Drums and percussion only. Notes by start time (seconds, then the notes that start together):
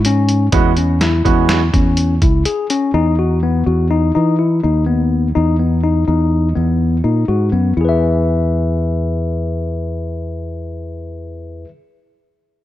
0.05 closed hi-hat
0.29 closed hi-hat
0.52 kick, closed hi-hat
0.77 closed hi-hat
1.01 snare, closed hi-hat
1.25 kick, closed hi-hat
1.49 snare, closed hi-hat
1.74 kick, closed hi-hat
1.97 closed hi-hat
2.22 kick, closed hi-hat
2.45 closed hi-hat
2.70 closed hi-hat